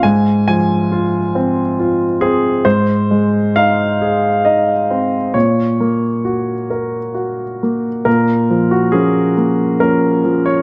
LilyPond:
<<
  \new Staff \with { instrumentName = "Grand piano" } { \time 3/4 \key bes \minor \tempo 4 = 68 aes''8 aes''4 r4 aes'8 | c''4 f''4 ees''4 | des''2~ des''8 r8 | bes'8. ges'16 aes'4 bes'8. des''16 | }
  \new Staff \with { instrumentName = "Grand piano" } { \time 3/4 \key bes \minor aes,8 f8 f'8 c'8 f'8 c'8 | aes,8 aes8 ees'8 aes'8 ees'8 c'8 | bes,8 bes8 ges'8 bes'8 ges'8 bes8 | bes,8 f8 <f bes des'>8 bes8 <f bes des'>8 f8 | }
>>